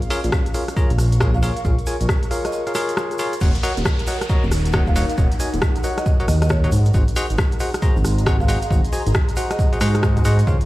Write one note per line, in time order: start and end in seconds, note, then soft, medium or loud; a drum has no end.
0.00 0.72 C#4 medium
0.00 0.54 G#4 medium
0.00 8.23 A#4 medium
0.00 1.06 D#5 medium
0.00 3.41 F5 medium
0.00 4.37 C#6 medium
0.00 closed hi-hat soft
0.00 shaker soft
0.10 0.19 F4 loud
0.10 0.19 G#4 medium
0.10 0.19 A#4 medium
0.10 0.19 C#5 medium
0.10 0.19 F5 loud
0.10 open hi-hat loud
0.10 shaker medium
0.24 0.30 A#1 medium
0.24 closed hi-hat medium
0.24 shaker soft
0.32 kick loud
0.32 cross-stick loud
0.32 claves medium
0.32 shaker soft
0.46 closed hi-hat medium
0.46 shaker soft
0.54 0.63 F4 medium
0.54 0.63 G#4 medium
0.54 0.63 A#4 medium
0.54 0.63 C#5 medium
0.54 0.63 F5 medium
0.54 open hi-hat medium
0.54 shaker medium
0.68 cross-stick soft
0.68 closed hi-hat medium
0.68 shaker soft
0.77 0.91 F4 medium
0.77 0.91 G#4 medium
0.77 0.91 A#4 medium
0.77 0.91 C#5 medium
0.77 0.91 A#5 loud
0.77 kick loud
0.77 shaker soft
0.90 1.51 A#1 medium
0.90 closed hi-hat medium
0.90 shaker soft
0.98 cross-stick medium
0.98 open hi-hat loud
0.98 shaker medium
1.12 closed hi-hat medium
1.12 shaker soft
1.20 1.30 F4 medium
1.20 1.30 G#4 medium
1.20 1.30 A#4 medium
1.20 1.30 C#5 medium
1.20 1.30 F5 loud
1.20 kick loud
1.20 cross-stick loud
1.20 shaker soft
1.34 1.40 F5 medium
1.34 kick medium
1.34 shaker soft
1.43 1.52 F4 medium
1.43 1.52 G#4 medium
1.43 1.52 A#4 medium
1.43 1.52 C#5 medium
1.43 1.52 F5 loud
1.43 open hi-hat medium
1.43 shaker medium
1.56 1.66 F5 medium
1.56 closed hi-hat medium
1.56 shaker soft
1.65 1.75 A#1 loud
1.65 1.74 F4 medium
1.65 1.74 G#4 medium
1.65 1.74 A#4 medium
1.65 1.74 C#5 medium
1.65 1.74 F5 medium
1.65 kick loud
1.65 shaker soft
1.79 closed hi-hat soft
1.79 shaker soft
1.86 1.96 F4 medium
1.86 1.96 G#4 medium
1.86 1.96 A#4 medium
1.86 1.96 C#5 medium
1.86 1.96 G#5 medium
1.86 open hi-hat loud
1.86 shaker medium
2.01 2.07 A#1 medium
2.01 closed hi-hat medium
2.01 shaker soft
2.09 kick loud
2.09 cross-stick loud
2.09 claves medium
2.09 shaker soft
2.23 closed hi-hat medium
2.23 shaker soft
2.31 2.63 F4 medium
2.31 2.63 G#4 medium
2.31 2.63 A#4 medium
2.31 2.63 C#5 medium
2.31 2.64 F5 medium
2.31 open hi-hat medium
2.31 shaker medium
2.45 2.50 D#5 medium
2.45 cross-stick medium
2.45 closed hi-hat medium
2.45 shaker soft
2.52 2.62 D#5 medium
2.52 shaker soft
2.67 2.72 F4 medium
2.67 2.72 G#4 medium
2.67 2.72 A#4 medium
2.67 2.72 C#5 medium
2.67 2.72 F5 medium
2.67 closed hi-hat medium
2.67 shaker soft
2.75 3.17 F4 loud
2.75 3.17 G#4 medium
2.75 3.17 A#4 medium
2.75 3.17 C#5 medium
2.75 3.17 F5 loud
2.75 cross-stick medium
2.75 open hi-hat loud
2.75 shaker medium
2.89 closed hi-hat medium
2.89 shaker soft
2.97 cross-stick loud
2.97 shaker soft
3.11 closed hi-hat soft
3.11 shaker soft
3.19 3.33 F4 medium
3.19 3.33 G#4 medium
3.19 3.33 A#4 medium
3.19 3.33 C#5 medium
3.19 3.33 F5 loud
3.19 open hi-hat loud
3.19 shaker medium
3.33 closed hi-hat medium
3.33 shaker soft
3.41 3.52 D#1 loud
3.41 8.23 D#4 medium
3.41 3.50 F#4 medium
3.41 3.50 A#4 medium
3.41 3.50 C#5 medium
3.41 3.50 D#5 medium
3.41 3.50 F#5 medium
3.41 kick loud
3.41 crash loud
3.41 downlifter medium
3.41 shaker medium
3.55 closed hi-hat medium
3.55 shaker soft
3.63 3.72 F#4 loud
3.63 3.72 A#4 medium
3.63 3.72 C#5 medium
3.63 3.72 D#5 medium
3.63 3.72 F#5 loud
3.63 open hi-hat loud
3.63 shaker medium
3.77 3.83 D#1 medium
3.77 closed hi-hat medium
3.77 shaker soft
3.85 kick loud
3.85 cross-stick loud
3.85 claves medium
3.85 shaker medium
3.99 8.15 F#5 medium
3.99 closed hi-hat medium
3.99 shaker soft
4.07 4.16 F#4 medium
4.07 4.16 A#4 medium
4.07 4.16 C#5 medium
4.07 4.16 D#5 medium
4.07 4.16 F#5 medium
4.07 open hi-hat loud
4.07 shaker medium
4.21 cross-stick medium
4.21 closed hi-hat medium
4.21 shaker soft
4.29 4.44 F#4 medium
4.29 4.44 A#4 medium
4.29 4.44 C#5 medium
4.29 4.44 D#5 medium
4.29 4.44 A#5 loud
4.29 kick loud
4.29 shaker soft
4.43 5.04 D#1 medium
4.43 shaker soft
4.52 cross-stick medium
4.52 open hi-hat loud
4.52 shaker medium
4.65 closed hi-hat medium
4.65 shaker soft
4.73 4.83 F#4 medium
4.73 4.83 A#4 medium
4.73 4.83 C#5 medium
4.73 4.83 D#5 medium
4.73 4.83 F#5 loud
4.73 kick loud
4.73 cross-stick loud
4.73 shaker medium
4.87 4.93 F5 medium
4.87 kick medium
4.87 shaker soft
4.96 5.05 F#4 medium
4.96 5.05 A#4 medium
4.96 5.05 C#5 medium
4.96 5.05 D#5 medium
4.96 5.04 F5 medium
4.96 5.05 F#5 loud
4.96 open hi-hat loud
4.96 shaker medium
5.09 5.19 F5 medium
5.09 closed hi-hat medium
5.09 shaker soft
5.18 5.28 D#1 loud
5.18 5.27 F#4 medium
5.18 5.27 A#4 medium
5.18 5.27 C#5 medium
5.18 5.27 D#5 medium
5.18 5.27 F#5 medium
5.18 kick loud
5.18 shaker medium
5.32 closed hi-hat medium
5.32 shaker soft
5.40 5.49 F#4 medium
5.40 5.49 A#4 medium
5.40 5.49 C#5 medium
5.40 5.49 D#5 medium
5.40 5.49 G#5 medium
5.40 open hi-hat loud
5.40 shaker loud
5.53 5.60 D#1 medium
5.53 closed hi-hat medium
5.53 shaker soft
5.61 kick loud
5.61 cross-stick loud
5.61 claves medium
5.61 shaker soft
5.76 closed hi-hat medium
5.76 shaker soft
5.83 6.17 F#4 medium
5.83 6.17 A#4 medium
5.83 6.17 C#5 medium
5.83 6.17 D#5 medium
5.83 6.17 F#5 medium
5.83 open hi-hat loud
5.83 shaker medium
5.98 6.03 D#5 medium
5.98 cross-stick medium
5.98 closed hi-hat medium
5.98 shaker soft
6.06 6.15 D#5 medium
6.06 kick loud
6.06 shaker medium
6.20 6.25 F#4 medium
6.20 6.25 A#4 medium
6.20 6.25 C#5 medium
6.20 6.25 D#5 medium
6.20 6.25 F#5 medium
6.20 closed hi-hat soft
6.20 shaker soft
6.28 6.69 D#2 medium
6.28 6.39 D#5 medium
6.28 cross-stick medium
6.28 open hi-hat loud
6.28 shaker loud
6.42 6.48 D#5 medium
6.42 cross-stick medium
6.42 closed hi-hat medium
6.42 shaker soft
6.49 6.78 C#5 medium
6.49 kick loud
6.49 cross-stick loud
6.49 shaker medium
6.64 6.69 F#4 medium
6.64 6.69 A#4 medium
6.64 6.69 C#5 medium
6.64 6.69 D#5 medium
6.64 6.69 F#5 medium
6.64 kick medium
6.64 closed hi-hat soft
6.64 shaker soft
6.72 6.90 G#2 medium
6.72 10.65 G#4 medium
6.72 open hi-hat loud
6.72 shaker medium
6.85 10.65 D#5 medium
6.85 closed hi-hat medium
6.85 shaker soft
6.94 7.05 G#1 loud
6.94 7.03 F#4 medium
6.94 7.03 G#4 medium
6.94 7.03 C5 medium
6.94 7.03 D#5 medium
6.94 7.03 F#5 medium
6.94 kick loud
6.94 shaker medium
7.08 closed hi-hat soft
7.08 shaker soft
7.16 7.25 F#4 loud
7.16 7.25 G#4 medium
7.16 7.25 C5 medium
7.16 7.25 D#5 medium
7.16 7.25 F#5 loud
7.16 10.65 A#5 medium
7.16 open hi-hat loud
7.16 shaker loud
7.30 7.36 G#1 medium
7.30 closed hi-hat medium
7.30 shaker soft
7.38 10.65 C6 medium
7.38 kick loud
7.38 cross-stick loud
7.38 claves medium
7.38 shaker soft
7.52 closed hi-hat soft
7.52 shaker soft
7.60 7.69 F#4 medium
7.60 7.69 G#4 medium
7.60 7.69 C5 medium
7.60 7.69 D#5 medium
7.60 7.69 F#5 medium
7.60 open hi-hat loud
7.60 shaker medium
7.74 cross-stick medium
7.74 closed hi-hat medium
7.74 shaker soft
7.82 7.97 F#4 medium
7.82 7.97 G#4 medium
7.82 7.97 C5 medium
7.82 7.97 D#5 medium
7.82 7.97 A#5 loud
7.82 kick loud
7.82 shaker medium
7.96 8.57 G#1 medium
7.96 shaker soft
8.05 cross-stick medium
8.05 open hi-hat loud
8.05 shaker loud
8.18 closed hi-hat medium
8.18 shaker soft
8.26 8.35 F#4 medium
8.26 8.35 G#4 medium
8.26 8.35 C5 medium
8.26 8.35 D#5 medium
8.26 8.35 F#5 loud
8.26 kick loud
8.26 cross-stick loud
8.26 shaker medium
8.40 8.46 F5 medium
8.40 kick medium
8.40 shaker soft
8.48 8.58 F#4 loud
8.48 8.57 G#4 medium
8.48 8.58 C5 medium
8.48 8.57 D#5 medium
8.48 8.57 F5 medium
8.48 8.57 F#5 loud
8.48 open hi-hat loud
8.48 shaker medium
8.62 8.72 F5 medium
8.62 closed hi-hat medium
8.62 shaker soft
8.71 8.81 G#1 loud
8.71 8.80 F#4 medium
8.71 8.80 G#4 medium
8.71 8.80 C5 medium
8.71 8.80 D#5 medium
8.71 8.80 F#5 medium
8.71 kick loud
8.71 shaker medium
8.85 closed hi-hat medium
8.85 shaker soft
8.93 9.02 F#4 medium
8.93 9.02 G#4 medium
8.93 9.02 C5 medium
8.93 9.02 D#5 medium
8.93 9.02 G#5 medium
8.93 open hi-hat loud
8.93 shaker loud
9.06 9.13 G#1 medium
9.06 closed hi-hat medium
9.06 shaker soft
9.14 kick loud
9.14 cross-stick loud
9.14 claves medium
9.14 shaker medium
9.29 closed hi-hat medium
9.29 shaker soft
9.36 9.69 F#4 medium
9.36 9.69 G#4 medium
9.36 9.69 C5 medium
9.36 9.69 D#5 medium
9.36 9.69 F#5 medium
9.36 open hi-hat loud
9.36 shaker loud
9.50 9.56 D#5 medium
9.50 cross-stick medium
9.50 closed hi-hat medium
9.50 shaker soft
9.59 9.68 D#5 medium
9.59 kick loud
9.59 shaker medium
9.73 9.78 F#4 medium
9.73 9.78 G#4 medium
9.73 9.78 C5 medium
9.73 9.78 D#5 medium
9.73 9.78 F#5 medium
9.73 closed hi-hat soft
9.73 shaker soft
9.80 10.22 G#2 medium
9.80 10.23 F#4 loud
9.80 10.23 G#4 medium
9.80 10.23 C5 medium
9.80 10.23 D#5 medium
9.80 10.23 F#5 loud
9.80 cross-stick medium
9.80 open hi-hat loud
9.80 shaker medium
9.94 cross-stick medium
9.94 closed hi-hat medium
9.94 shaker soft
10.03 kick loud
10.03 cross-stick loud
10.03 shaker medium
10.17 kick medium
10.17 closed hi-hat soft
10.17 shaker soft
10.25 10.43 G#2 medium
10.25 10.39 F#4 medium
10.25 10.39 G#4 medium
10.25 10.39 C5 medium
10.25 10.39 D#5 medium
10.25 10.39 F#5 loud
10.25 open hi-hat loud
10.25 shaker loud
10.39 closed hi-hat medium
10.39 shaker soft
10.47 10.57 C#2 loud
10.47 10.56 F4 medium
10.47 10.56 G#4 medium
10.47 10.56 C5 medium
10.47 10.56 C#5 medium
10.47 10.56 F5 medium
10.47 kick loud
10.47 shaker soft
10.61 closed hi-hat medium
10.61 shaker soft